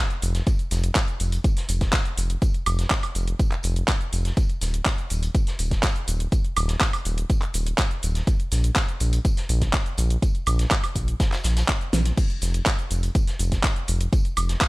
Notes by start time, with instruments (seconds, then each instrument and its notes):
0.10 closed hi-hat, shaker
0.22 analog synth bass F1, open hi-hat, tambourine, shaker
0.35 snare, closed hi-hat, shaker
0.47 kick, closed hi-hat, tambourine, shaker
0.59 closed hi-hat, shaker
0.71 analog synth bass F1, snare, open hi-hat, tambourine, shaker
0.84 closed hi-hat, shaker
0.95 kick, snare, clap, closed hi-hat, tambourine, shaker
1.08 closed hi-hat, shaker
1.20 analog synth bass F1, open hi-hat, tambourine, shaker
1.32 closed hi-hat, shaker
1.44 kick, closed hi-hat, tambourine, shaker
1.57 snare, open hi-hat, shaker
1.69 analog synth bass F1, open hi-hat, tambourine, shaker
1.81 kick, snare, closed hi-hat, shaker
1.93 kick, snare, clap, closed hi-hat, tambourine, shaker
2.06 closed hi-hat, shaker
2.17 analog synth bass F1, open hi-hat, tambourine, shaker
2.30 closed hi-hat, shaker
2.42 kick, closed hi-hat, tambourine, shaker
2.54 closed hi-hat, shaker
2.66 analog synth bass F1, open hi-hat, tambourine, high woodblock, shaker
2.79 snare, closed hi-hat, shaker
2.90 kick, snare, clap, closed hi-hat, tambourine, high woodblock, shaker
3.03 closed hi-hat, open hi-hat, high woodblock, shaker
3.15 analog synth bass F1, open hi-hat, tambourine, shaker
3.27 closed hi-hat, shaker
3.39 kick, closed hi-hat, tambourine, shaker
3.52 clap, closed hi-hat, shaker
3.63 analog synth bass F1, open hi-hat, tambourine, shaker
3.76 closed hi-hat, shaker
3.88 kick, snare, clap, closed hi-hat, tambourine, shaker
4.01 closed hi-hat, shaker
4.13 analog synth bass F1, open hi-hat, tambourine, shaker
4.25 snare, closed hi-hat, shaker
4.37 kick, closed hi-hat, tambourine, shaker
4.49 closed hi-hat, shaker
4.61 analog synth bass D#1, snare, open hi-hat, tambourine, shaker
4.74 closed hi-hat, shaker
4.85 kick, snare, clap, closed hi-hat, tambourine, shaker
4.98 closed hi-hat, shaker
5.10 analog synth bass D#1, open hi-hat, tambourine, shaker
5.23 closed hi-hat, shaker
5.35 kick, closed hi-hat, tambourine, shaker
5.47 snare, open hi-hat, shaker
5.59 analog synth bass D#1, open hi-hat, tambourine, shaker
5.71 kick, snare, closed hi-hat, shaker
5.83 kick, snare, clap, closed hi-hat, tambourine, shaker
5.96 closed hi-hat, shaker
6.08 analog synth bass D#1, open hi-hat, tambourine, shaker
6.20 closed hi-hat, shaker
6.32 kick, closed hi-hat, tambourine, shaker
6.45 closed hi-hat, shaker
6.57 analog synth bass D#1, open hi-hat, tambourine, high woodblock, shaker
6.68 snare, closed hi-hat, shaker
6.81 kick, snare, clap, closed hi-hat, tambourine, high woodblock, shaker
6.93 closed hi-hat, open hi-hat, high woodblock, shaker
7.05 analog synth bass D#1, open hi-hat, tambourine, shaker
7.18 closed hi-hat, shaker
7.30 kick, closed hi-hat, tambourine, shaker
7.42 clap, closed hi-hat, shaker
7.54 analog synth bass D#1, open hi-hat, tambourine, shaker
7.66 closed hi-hat, shaker
7.78 kick, snare, clap, closed hi-hat, tambourine, shaker
7.91 closed hi-hat, shaker
8.03 analog synth bass D#1, open hi-hat, tambourine, shaker
8.15 snare, closed hi-hat, shaker
8.27 kick, closed hi-hat, tambourine, shaker
8.40 closed hi-hat, shaker
8.51 analog synth bass A#1, snare, open hi-hat, tambourine, shaker
8.64 closed hi-hat, shaker
8.76 kick, snare, clap, closed hi-hat, tambourine, shaker
8.88 closed hi-hat, shaker
9.00 analog synth bass A#1, open hi-hat, tambourine, shaker
9.13 closed hi-hat, shaker
9.25 kick, closed hi-hat, tambourine, shaker
9.37 snare, open hi-hat, shaker
9.49 analog synth bass A#1, open hi-hat, tambourine, shaker
9.61 kick, snare, closed hi-hat, shaker
9.73 kick, snare, clap, closed hi-hat, tambourine, shaker
9.86 closed hi-hat, shaker
9.98 analog synth bass A#1, open hi-hat, tambourine, shaker
10.10 closed hi-hat, shaker
10.22 kick, closed hi-hat, tambourine, shaker
10.35 closed hi-hat, shaker
10.46 analog synth bass A#1, open hi-hat, tambourine, high woodblock, shaker
10.59 snare, closed hi-hat, shaker
10.71 kick, snare, clap, closed hi-hat, tambourine, high woodblock, shaker
10.84 closed hi-hat, open hi-hat, high woodblock, shaker
10.96 analog synth bass A#1, kick, open hi-hat, tambourine, shaker
11.08 closed hi-hat, shaker
11.20 kick, snare, closed hi-hat, tambourine, shaker
11.32 snare, clap, closed hi-hat, tambourine, shaker
11.44 analog synth bass A#1, snare, open hi-hat, tambourine, shaker
11.57 snare, closed hi-hat, tambourine, shaker
11.68 kick, snare, clap, closed hi-hat, shaker
11.81 closed hi-hat, shaker
11.93 analog synth bass A#1, snare, open hi-hat, tambourine, shaker
12.05 snare, closed hi-hat, shaker
12.17 kick, closed hi-hat, crash, tambourine, shaker
12.30 closed hi-hat, shaker
12.42 analog synth bass F1, snare, open hi-hat, tambourine, shaker
12.54 closed hi-hat, shaker
12.66 kick, snare, clap, closed hi-hat, tambourine, shaker
12.79 closed hi-hat, shaker
12.91 analog synth bass F1, open hi-hat, tambourine, shaker
13.03 closed hi-hat, shaker
13.15 kick, closed hi-hat, tambourine, shaker
13.27 snare, open hi-hat, shaker
13.39 analog synth bass F1, open hi-hat, tambourine, shaker
13.52 kick, snare, closed hi-hat, shaker
13.63 kick, snare, clap, closed hi-hat, tambourine, shaker
13.76 closed hi-hat, shaker
13.88 analog synth bass F1, open hi-hat, tambourine, shaker
14.01 closed hi-hat, shaker
14.13 kick, closed hi-hat, tambourine, shaker
14.25 closed hi-hat, shaker
14.37 analog synth bass F1, open hi-hat, tambourine, high woodblock, shaker
14.49 snare, closed hi-hat, shaker
14.61 kick, snare, clap, closed hi-hat, tambourine, high woodblock, shaker